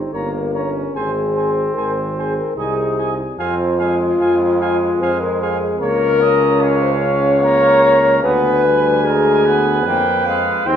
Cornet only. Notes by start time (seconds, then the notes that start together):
0.15 A#5
0.55 A#5
0.94 G#5
1.35 G#5
1.77 G#5
2.18 G#5
2.58 G#5
2.98 G#5
3.39 G#5
3.80 G#5
4.20 G#5
4.61 G#5
5.02 G#5
5.41 G#5
5.81 A#5
6.61 F5
7.44 A#5
8.23 G#5
9.87 G5
10.27 F5
10.67 G5